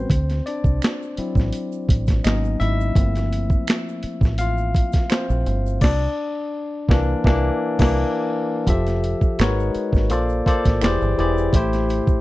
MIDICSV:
0, 0, Header, 1, 5, 480
1, 0, Start_track
1, 0, Tempo, 714286
1, 68, Time_signature, 4, 2, 24, 8
1, 8204, End_track
2, 0, Start_track
2, 0, Title_t, "Tine electric piano"
2, 0, Program_c, 0, 4
2, 0, Control_c, 0, 64, 127
2, 0, Note_on_c, 0, 55, 49
2, 0, Note_on_c, 0, 57, 45
2, 0, Note_on_c, 0, 59, 69
2, 0, Note_on_c, 0, 60, 66
2, 0, Note_on_c, 0, 61, 44
2, 0, Note_on_c, 0, 66, 55
2, 0, Note_on_c, 0, 71, 86
2, 0, Note_on_c, 0, 72, 84
2, 77, Control_c, 0, 64, 0
2, 78, Note_off_c, 0, 59, 0
2, 78, Note_off_c, 0, 66, 0
2, 78, Note_off_c, 0, 71, 0
2, 81, Note_off_c, 0, 55, 0
2, 82, Note_off_c, 0, 57, 0
2, 83, Note_off_c, 0, 61, 0
2, 174, Control_c, 0, 64, 127
2, 288, Note_off_c, 0, 60, 0
2, 309, Note_on_c, 0, 74, 80
2, 322, Note_off_c, 0, 72, 0
2, 324, Note_on_c, 0, 62, 61
2, 792, Note_on_c, 0, 54, 51
2, 797, Note_on_c, 0, 60, 47
2, 801, Note_on_c, 0, 64, 58
2, 1241, Note_off_c, 0, 74, 0
2, 1249, Note_off_c, 0, 62, 0
2, 1483, Note_off_c, 0, 54, 0
2, 1485, Note_off_c, 0, 60, 0
2, 1487, Note_off_c, 0, 64, 0
2, 1507, Note_on_c, 0, 75, 80
2, 1512, Note_on_c, 0, 54, 49
2, 1514, Note_on_c, 0, 58, 46
2, 1517, Control_c, 0, 64, 0
2, 1517, Note_on_c, 0, 59, 46
2, 1520, Note_on_c, 0, 61, 55
2, 1521, Note_on_c, 0, 63, 60
2, 1623, Control_c, 0, 64, 127
2, 1738, Note_off_c, 0, 63, 0
2, 1746, Note_on_c, 0, 76, 98
2, 1754, Note_off_c, 0, 75, 0
2, 1761, Note_on_c, 0, 64, 71
2, 1835, Note_off_c, 0, 54, 0
2, 1837, Note_off_c, 0, 58, 0
2, 1838, Note_off_c, 0, 59, 0
2, 1840, Note_off_c, 0, 61, 0
2, 1995, Note_on_c, 0, 53, 56
2, 1996, Control_c, 0, 64, 0
2, 1999, Note_on_c, 0, 57, 48
2, 2002, Note_on_c, 0, 58, 46
2, 2005, Note_on_c, 0, 60, 59
2, 2113, Control_c, 0, 64, 127
2, 2920, Note_off_c, 0, 76, 0
2, 2928, Note_off_c, 0, 64, 0
2, 2947, Note_on_c, 0, 77, 98
2, 2963, Note_on_c, 0, 65, 75
2, 3409, Note_off_c, 0, 65, 0
2, 3431, Note_on_c, 0, 72, 76
2, 3436, Note_off_c, 0, 60, 0
2, 3442, Note_off_c, 0, 77, 0
2, 3444, Note_on_c, 0, 60, 60
2, 3885, Note_off_c, 0, 53, 0
2, 3886, Note_off_c, 0, 57, 0
2, 3888, Note_off_c, 0, 58, 0
2, 3889, Note_off_c, 0, 60, 0
2, 3908, Note_on_c, 0, 74, 98
2, 3916, Control_c, 0, 64, 0
2, 3922, Note_on_c, 0, 62, 92
2, 3923, Note_off_c, 0, 72, 0
2, 4015, Control_c, 0, 64, 127
2, 4074, Note_off_c, 0, 74, 0
2, 4082, Note_off_c, 0, 62, 0
2, 4631, Note_on_c, 0, 52, 90
2, 4634, Note_on_c, 0, 58, 94
2, 4638, Note_on_c, 0, 62, 94
2, 4796, Note_off_c, 0, 52, 0
2, 4798, Note_off_c, 0, 58, 0
2, 4800, Note_off_c, 0, 62, 0
2, 4872, Note_on_c, 0, 52, 96
2, 4875, Note_on_c, 0, 58, 90
2, 4880, Note_on_c, 0, 62, 85
2, 5036, Note_off_c, 0, 52, 0
2, 5038, Note_off_c, 0, 58, 0
2, 5041, Note_off_c, 0, 62, 0
2, 5239, Note_on_c, 0, 52, 85
2, 5243, Note_on_c, 0, 58, 89
2, 5248, Note_on_c, 0, 62, 91
2, 5398, Note_off_c, 0, 52, 0
2, 5401, Note_off_c, 0, 58, 0
2, 5403, Note_off_c, 0, 62, 0
2, 5829, Note_on_c, 0, 53, 81
2, 5833, Note_on_c, 0, 65, 70
2, 5836, Control_c, 0, 64, 0
2, 5837, Note_on_c, 0, 67, 71
2, 5841, Note_on_c, 0, 69, 74
2, 5845, Note_on_c, 0, 76, 89
2, 5939, Control_c, 0, 64, 127
2, 6308, Note_off_c, 0, 53, 0
2, 6311, Note_off_c, 0, 65, 0
2, 6311, Note_on_c, 0, 56, 89
2, 6312, Note_off_c, 0, 67, 0
2, 6313, Note_on_c, 0, 63, 82
2, 6314, Note_off_c, 0, 69, 0
2, 6316, Note_off_c, 0, 76, 0
2, 6316, Note_on_c, 0, 66, 76
2, 6317, Control_c, 0, 64, 0
2, 6319, Note_on_c, 0, 70, 75
2, 6323, Note_on_c, 0, 71, 79
2, 6326, Note_on_c, 0, 73, 95
2, 6436, Control_c, 0, 64, 127
2, 6724, Note_off_c, 0, 56, 0
2, 6725, Note_off_c, 0, 63, 0
2, 6726, Note_off_c, 0, 66, 0
2, 6728, Note_off_c, 0, 70, 0
2, 6730, Note_off_c, 0, 71, 0
2, 6731, Note_off_c, 0, 73, 0
2, 6790, Note_on_c, 0, 58, 82
2, 6794, Note_on_c, 0, 65, 73
2, 6795, Control_c, 0, 64, 0
2, 6797, Note_on_c, 0, 69, 77
2, 6803, Note_on_c, 0, 72, 76
2, 6806, Note_on_c, 0, 74, 91
2, 6912, Control_c, 0, 64, 127
2, 6996, Note_off_c, 0, 58, 0
2, 6998, Note_off_c, 0, 65, 0
2, 7000, Note_off_c, 0, 69, 0
2, 7002, Note_off_c, 0, 72, 0
2, 7004, Note_off_c, 0, 74, 0
2, 7028, Note_on_c, 0, 58, 82
2, 7032, Note_on_c, 0, 65, 77
2, 7036, Note_on_c, 0, 69, 76
2, 7040, Note_on_c, 0, 72, 74
2, 7044, Note_on_c, 0, 74, 91
2, 7268, Note_off_c, 0, 58, 0
2, 7268, Note_on_c, 0, 52, 79
2, 7270, Note_off_c, 0, 65, 0
2, 7271, Note_on_c, 0, 64, 72
2, 7272, Note_off_c, 0, 69, 0
2, 7272, Note_off_c, 0, 72, 0
2, 7275, Note_on_c, 0, 67, 73
2, 7276, Note_off_c, 0, 74, 0
2, 7277, Note_on_c, 0, 68, 73
2, 7278, Control_c, 0, 64, 0
2, 7280, Note_on_c, 0, 72, 73
2, 7284, Note_on_c, 0, 74, 89
2, 7391, Control_c, 0, 64, 127
2, 7475, Note_off_c, 0, 52, 0
2, 7476, Note_off_c, 0, 64, 0
2, 7478, Note_off_c, 0, 67, 0
2, 7480, Note_off_c, 0, 68, 0
2, 7481, Note_off_c, 0, 72, 0
2, 7483, Note_off_c, 0, 74, 0
2, 7512, Note_on_c, 0, 52, 74
2, 7515, Note_on_c, 0, 64, 69
2, 7518, Note_on_c, 0, 67, 67
2, 7522, Note_on_c, 0, 68, 64
2, 7524, Note_on_c, 0, 72, 67
2, 7527, Note_on_c, 0, 74, 82
2, 7717, Note_off_c, 0, 52, 0
2, 7719, Note_off_c, 0, 64, 0
2, 7720, Note_off_c, 0, 67, 0
2, 7722, Note_off_c, 0, 68, 0
2, 7723, Note_off_c, 0, 72, 0
2, 7725, Note_off_c, 0, 74, 0
2, 7751, Note_on_c, 0, 45, 76
2, 7755, Note_on_c, 0, 57, 75
2, 7757, Control_c, 0, 64, 0
2, 7759, Note_on_c, 0, 64, 73
2, 7764, Note_on_c, 0, 67, 73
2, 7768, Note_on_c, 0, 72, 91
2, 7888, Control_c, 0, 64, 127
2, 8204, Note_off_c, 0, 45, 0
2, 8204, Note_off_c, 0, 57, 0
2, 8204, Note_off_c, 0, 64, 0
2, 8204, Note_off_c, 0, 67, 0
2, 8204, Note_off_c, 0, 72, 0
2, 8204, End_track
3, 0, Start_track
3, 0, Title_t, "Fingered electric bass"
3, 0, Program_c, 1, 33
3, 67, Note_on_c, 1, 38, 105
3, 269, Note_off_c, 1, 38, 0
3, 433, Note_on_c, 1, 36, 83
3, 528, Note_off_c, 1, 36, 0
3, 913, Note_on_c, 1, 33, 82
3, 1008, Note_off_c, 1, 33, 0
3, 1270, Note_on_c, 1, 33, 82
3, 1471, Note_off_c, 1, 33, 0
3, 1512, Note_on_c, 1, 32, 88
3, 1712, Note_off_c, 1, 32, 0
3, 1751, Note_on_c, 1, 32, 93
3, 1951, Note_off_c, 1, 32, 0
3, 1987, Note_on_c, 1, 31, 99
3, 2390, Note_off_c, 1, 31, 0
3, 2832, Note_on_c, 1, 33, 84
3, 3237, Note_off_c, 1, 33, 0
3, 3560, Note_on_c, 1, 34, 84
3, 3652, Note_off_c, 1, 34, 0
3, 3672, Note_on_c, 1, 31, 83
3, 3906, Note_off_c, 1, 31, 0
3, 3910, Note_on_c, 1, 36, 99
3, 4075, Note_off_c, 1, 36, 0
3, 4631, Note_on_c, 1, 36, 92
3, 4795, Note_off_c, 1, 36, 0
3, 4870, Note_on_c, 1, 36, 87
3, 5035, Note_off_c, 1, 36, 0
3, 5239, Note_on_c, 1, 36, 96
3, 5398, Note_off_c, 1, 36, 0
3, 5828, Note_on_c, 1, 29, 100
3, 6137, Note_off_c, 1, 29, 0
3, 6313, Note_on_c, 1, 32, 89
3, 6512, Note_off_c, 1, 32, 0
3, 6673, Note_on_c, 1, 32, 70
3, 6793, Note_off_c, 1, 32, 0
3, 6793, Note_on_c, 1, 34, 84
3, 6992, Note_off_c, 1, 34, 0
3, 7163, Note_on_c, 1, 33, 79
3, 7254, Note_off_c, 1, 33, 0
3, 7275, Note_on_c, 1, 28, 92
3, 7380, Note_off_c, 1, 28, 0
3, 7404, Note_on_c, 1, 31, 81
3, 7494, Note_off_c, 1, 31, 0
3, 7516, Note_on_c, 1, 28, 84
3, 7714, Note_off_c, 1, 28, 0
3, 7750, Note_on_c, 1, 33, 94
3, 8058, Note_off_c, 1, 33, 0
3, 8204, End_track
4, 0, Start_track
4, 0, Title_t, "Muted fingered electric bass strokes"
4, 793, Note_on_c, 9, 29, 42
4, 860, Note_off_c, 9, 29, 0
4, 2712, Note_on_c, 9, 29, 44
4, 2779, Note_off_c, 9, 29, 0
4, 6195, Note_on_c, 9, 29, 43
4, 6262, Note_off_c, 9, 29, 0
4, 8115, Note_on_c, 9, 29, 44
4, 8182, Note_off_c, 9, 29, 0
4, 8204, End_track
5, 0, Start_track
5, 0, Title_t, "Drums"
5, 65, Note_on_c, 9, 36, 99
5, 72, Note_on_c, 9, 42, 73
5, 75, Note_on_c, 9, 82, 65
5, 132, Note_off_c, 9, 36, 0
5, 139, Note_off_c, 9, 42, 0
5, 142, Note_off_c, 9, 82, 0
5, 199, Note_on_c, 9, 42, 34
5, 202, Note_on_c, 9, 82, 40
5, 208, Note_on_c, 9, 38, 27
5, 266, Note_off_c, 9, 42, 0
5, 269, Note_off_c, 9, 82, 0
5, 275, Note_off_c, 9, 38, 0
5, 312, Note_on_c, 9, 82, 38
5, 314, Note_on_c, 9, 42, 63
5, 379, Note_off_c, 9, 82, 0
5, 382, Note_off_c, 9, 42, 0
5, 431, Note_on_c, 9, 36, 86
5, 434, Note_on_c, 9, 82, 45
5, 498, Note_off_c, 9, 36, 0
5, 501, Note_off_c, 9, 82, 0
5, 551, Note_on_c, 9, 42, 77
5, 552, Note_on_c, 9, 26, 60
5, 552, Note_on_c, 9, 82, 58
5, 567, Note_on_c, 9, 38, 98
5, 572, Note_on_c, 9, 39, 72
5, 618, Note_off_c, 9, 42, 0
5, 619, Note_off_c, 9, 26, 0
5, 619, Note_off_c, 9, 82, 0
5, 634, Note_off_c, 9, 38, 0
5, 639, Note_off_c, 9, 39, 0
5, 688, Note_on_c, 9, 82, 41
5, 756, Note_off_c, 9, 82, 0
5, 789, Note_on_c, 9, 42, 63
5, 856, Note_off_c, 9, 42, 0
5, 910, Note_on_c, 9, 36, 89
5, 919, Note_on_c, 9, 82, 45
5, 938, Note_on_c, 9, 38, 33
5, 977, Note_off_c, 9, 36, 0
5, 987, Note_off_c, 9, 82, 0
5, 1005, Note_off_c, 9, 38, 0
5, 1025, Note_on_c, 9, 42, 88
5, 1031, Note_on_c, 9, 82, 59
5, 1092, Note_off_c, 9, 42, 0
5, 1099, Note_off_c, 9, 82, 0
5, 1158, Note_on_c, 9, 82, 43
5, 1225, Note_off_c, 9, 82, 0
5, 1268, Note_on_c, 9, 36, 89
5, 1272, Note_on_c, 9, 82, 45
5, 1278, Note_on_c, 9, 42, 67
5, 1335, Note_off_c, 9, 36, 0
5, 1339, Note_off_c, 9, 82, 0
5, 1345, Note_off_c, 9, 42, 0
5, 1391, Note_on_c, 9, 82, 48
5, 1397, Note_on_c, 9, 36, 90
5, 1397, Note_on_c, 9, 42, 48
5, 1413, Note_on_c, 9, 38, 33
5, 1458, Note_off_c, 9, 82, 0
5, 1464, Note_off_c, 9, 36, 0
5, 1465, Note_off_c, 9, 42, 0
5, 1481, Note_off_c, 9, 38, 0
5, 1509, Note_on_c, 9, 26, 65
5, 1509, Note_on_c, 9, 82, 67
5, 1510, Note_on_c, 9, 42, 74
5, 1524, Note_on_c, 9, 38, 92
5, 1528, Note_on_c, 9, 39, 78
5, 1576, Note_off_c, 9, 26, 0
5, 1576, Note_off_c, 9, 82, 0
5, 1577, Note_off_c, 9, 42, 0
5, 1591, Note_off_c, 9, 38, 0
5, 1596, Note_off_c, 9, 39, 0
5, 1642, Note_on_c, 9, 82, 39
5, 1709, Note_off_c, 9, 82, 0
5, 1750, Note_on_c, 9, 82, 41
5, 1757, Note_on_c, 9, 42, 55
5, 1817, Note_off_c, 9, 82, 0
5, 1824, Note_off_c, 9, 42, 0
5, 1885, Note_on_c, 9, 82, 48
5, 1952, Note_off_c, 9, 82, 0
5, 1985, Note_on_c, 9, 36, 102
5, 1991, Note_on_c, 9, 42, 76
5, 1995, Note_on_c, 9, 82, 60
5, 2052, Note_off_c, 9, 36, 0
5, 2059, Note_off_c, 9, 42, 0
5, 2062, Note_off_c, 9, 82, 0
5, 2120, Note_on_c, 9, 42, 35
5, 2124, Note_on_c, 9, 82, 41
5, 2129, Note_on_c, 9, 38, 29
5, 2187, Note_off_c, 9, 42, 0
5, 2192, Note_off_c, 9, 82, 0
5, 2196, Note_off_c, 9, 38, 0
5, 2233, Note_on_c, 9, 82, 40
5, 2235, Note_on_c, 9, 42, 65
5, 2300, Note_off_c, 9, 82, 0
5, 2302, Note_off_c, 9, 42, 0
5, 2351, Note_on_c, 9, 36, 88
5, 2356, Note_on_c, 9, 82, 44
5, 2418, Note_off_c, 9, 36, 0
5, 2423, Note_off_c, 9, 82, 0
5, 2469, Note_on_c, 9, 42, 78
5, 2472, Note_on_c, 9, 26, 61
5, 2472, Note_on_c, 9, 82, 58
5, 2485, Note_on_c, 9, 38, 98
5, 2490, Note_on_c, 9, 39, 77
5, 2536, Note_off_c, 9, 42, 0
5, 2539, Note_off_c, 9, 26, 0
5, 2539, Note_off_c, 9, 82, 0
5, 2552, Note_off_c, 9, 38, 0
5, 2557, Note_off_c, 9, 39, 0
5, 2610, Note_on_c, 9, 82, 41
5, 2678, Note_off_c, 9, 82, 0
5, 2706, Note_on_c, 9, 42, 61
5, 2773, Note_off_c, 9, 42, 0
5, 2829, Note_on_c, 9, 36, 90
5, 2841, Note_on_c, 9, 82, 49
5, 2857, Note_on_c, 9, 38, 35
5, 2897, Note_off_c, 9, 36, 0
5, 2908, Note_off_c, 9, 82, 0
5, 2924, Note_off_c, 9, 38, 0
5, 2943, Note_on_c, 9, 42, 88
5, 2948, Note_on_c, 9, 82, 61
5, 3010, Note_off_c, 9, 42, 0
5, 3016, Note_off_c, 9, 82, 0
5, 3074, Note_on_c, 9, 82, 44
5, 3142, Note_off_c, 9, 82, 0
5, 3189, Note_on_c, 9, 36, 90
5, 3189, Note_on_c, 9, 82, 46
5, 3199, Note_on_c, 9, 42, 68
5, 3256, Note_off_c, 9, 36, 0
5, 3256, Note_off_c, 9, 82, 0
5, 3266, Note_off_c, 9, 42, 0
5, 3308, Note_on_c, 9, 82, 46
5, 3316, Note_on_c, 9, 42, 50
5, 3317, Note_on_c, 9, 36, 87
5, 3332, Note_on_c, 9, 38, 33
5, 3375, Note_off_c, 9, 82, 0
5, 3383, Note_off_c, 9, 42, 0
5, 3385, Note_off_c, 9, 36, 0
5, 3399, Note_off_c, 9, 38, 0
5, 3425, Note_on_c, 9, 26, 70
5, 3425, Note_on_c, 9, 82, 67
5, 3427, Note_on_c, 9, 42, 69
5, 3440, Note_on_c, 9, 38, 94
5, 3445, Note_on_c, 9, 39, 79
5, 3492, Note_off_c, 9, 26, 0
5, 3492, Note_off_c, 9, 82, 0
5, 3494, Note_off_c, 9, 42, 0
5, 3507, Note_off_c, 9, 38, 0
5, 3512, Note_off_c, 9, 39, 0
5, 3561, Note_on_c, 9, 82, 39
5, 3629, Note_off_c, 9, 82, 0
5, 3671, Note_on_c, 9, 82, 43
5, 3672, Note_on_c, 9, 42, 60
5, 3739, Note_off_c, 9, 42, 0
5, 3739, Note_off_c, 9, 82, 0
5, 3806, Note_on_c, 9, 82, 49
5, 3873, Note_off_c, 9, 82, 0
5, 3905, Note_on_c, 9, 49, 81
5, 3907, Note_on_c, 9, 36, 103
5, 3924, Note_on_c, 9, 38, 99
5, 3972, Note_off_c, 9, 49, 0
5, 3974, Note_off_c, 9, 36, 0
5, 3991, Note_off_c, 9, 38, 0
5, 4628, Note_on_c, 9, 36, 97
5, 4645, Note_on_c, 9, 38, 100
5, 4695, Note_off_c, 9, 36, 0
5, 4712, Note_off_c, 9, 38, 0
5, 4867, Note_on_c, 9, 36, 104
5, 4885, Note_on_c, 9, 38, 100
5, 4935, Note_off_c, 9, 36, 0
5, 4952, Note_off_c, 9, 38, 0
5, 5235, Note_on_c, 9, 49, 78
5, 5236, Note_on_c, 9, 36, 102
5, 5254, Note_on_c, 9, 38, 104
5, 5302, Note_off_c, 9, 49, 0
5, 5303, Note_off_c, 9, 36, 0
5, 5321, Note_off_c, 9, 38, 0
5, 5825, Note_on_c, 9, 36, 93
5, 5829, Note_on_c, 9, 42, 73
5, 5834, Note_on_c, 9, 82, 65
5, 5892, Note_off_c, 9, 36, 0
5, 5896, Note_off_c, 9, 42, 0
5, 5901, Note_off_c, 9, 82, 0
5, 5958, Note_on_c, 9, 42, 36
5, 5962, Note_on_c, 9, 82, 40
5, 5967, Note_on_c, 9, 38, 29
5, 6025, Note_off_c, 9, 42, 0
5, 6029, Note_off_c, 9, 82, 0
5, 6034, Note_off_c, 9, 38, 0
5, 6072, Note_on_c, 9, 82, 38
5, 6073, Note_on_c, 9, 42, 67
5, 6140, Note_off_c, 9, 82, 0
5, 6141, Note_off_c, 9, 42, 0
5, 6192, Note_on_c, 9, 36, 81
5, 6194, Note_on_c, 9, 82, 44
5, 6259, Note_off_c, 9, 36, 0
5, 6261, Note_off_c, 9, 82, 0
5, 6309, Note_on_c, 9, 42, 77
5, 6314, Note_on_c, 9, 26, 59
5, 6314, Note_on_c, 9, 82, 56
5, 6325, Note_on_c, 9, 38, 95
5, 6330, Note_on_c, 9, 39, 71
5, 6377, Note_off_c, 9, 42, 0
5, 6381, Note_off_c, 9, 26, 0
5, 6381, Note_off_c, 9, 82, 0
5, 6393, Note_off_c, 9, 38, 0
5, 6397, Note_off_c, 9, 39, 0
5, 6448, Note_on_c, 9, 82, 42
5, 6516, Note_off_c, 9, 82, 0
5, 6549, Note_on_c, 9, 42, 60
5, 6551, Note_on_c, 9, 82, 45
5, 6616, Note_off_c, 9, 42, 0
5, 6619, Note_off_c, 9, 82, 0
5, 6670, Note_on_c, 9, 36, 90
5, 6681, Note_on_c, 9, 82, 47
5, 6697, Note_on_c, 9, 38, 33
5, 6738, Note_off_c, 9, 36, 0
5, 6748, Note_off_c, 9, 82, 0
5, 6764, Note_off_c, 9, 38, 0
5, 6786, Note_on_c, 9, 42, 86
5, 6790, Note_on_c, 9, 82, 59
5, 6853, Note_off_c, 9, 42, 0
5, 6857, Note_off_c, 9, 82, 0
5, 6916, Note_on_c, 9, 82, 43
5, 6983, Note_off_c, 9, 82, 0
5, 7031, Note_on_c, 9, 36, 87
5, 7040, Note_on_c, 9, 42, 64
5, 7098, Note_off_c, 9, 36, 0
5, 7107, Note_off_c, 9, 42, 0
5, 7153, Note_on_c, 9, 82, 46
5, 7159, Note_on_c, 9, 36, 92
5, 7160, Note_on_c, 9, 42, 46
5, 7176, Note_on_c, 9, 38, 34
5, 7220, Note_off_c, 9, 82, 0
5, 7227, Note_off_c, 9, 36, 0
5, 7227, Note_off_c, 9, 42, 0
5, 7243, Note_off_c, 9, 38, 0
5, 7268, Note_on_c, 9, 26, 63
5, 7268, Note_on_c, 9, 82, 64
5, 7271, Note_on_c, 9, 42, 70
5, 7285, Note_on_c, 9, 38, 88
5, 7290, Note_on_c, 9, 39, 77
5, 7335, Note_off_c, 9, 26, 0
5, 7335, Note_off_c, 9, 82, 0
5, 7339, Note_off_c, 9, 42, 0
5, 7352, Note_off_c, 9, 38, 0
5, 7357, Note_off_c, 9, 39, 0
5, 7404, Note_on_c, 9, 82, 36
5, 7471, Note_off_c, 9, 82, 0
5, 7518, Note_on_c, 9, 42, 56
5, 7586, Note_off_c, 9, 42, 0
5, 7644, Note_on_c, 9, 82, 47
5, 7711, Note_off_c, 9, 82, 0
5, 7747, Note_on_c, 9, 36, 101
5, 7754, Note_on_c, 9, 42, 77
5, 7754, Note_on_c, 9, 82, 64
5, 7814, Note_off_c, 9, 36, 0
5, 7821, Note_off_c, 9, 42, 0
5, 7821, Note_off_c, 9, 82, 0
5, 7883, Note_on_c, 9, 42, 35
5, 7883, Note_on_c, 9, 82, 41
5, 7893, Note_on_c, 9, 38, 29
5, 7951, Note_off_c, 9, 42, 0
5, 7951, Note_off_c, 9, 82, 0
5, 7960, Note_off_c, 9, 38, 0
5, 7990, Note_on_c, 9, 82, 41
5, 7998, Note_on_c, 9, 42, 64
5, 8057, Note_off_c, 9, 82, 0
5, 8065, Note_off_c, 9, 42, 0
5, 8113, Note_on_c, 9, 36, 85
5, 8114, Note_on_c, 9, 82, 45
5, 8180, Note_off_c, 9, 36, 0
5, 8182, Note_off_c, 9, 82, 0
5, 8204, End_track
0, 0, End_of_file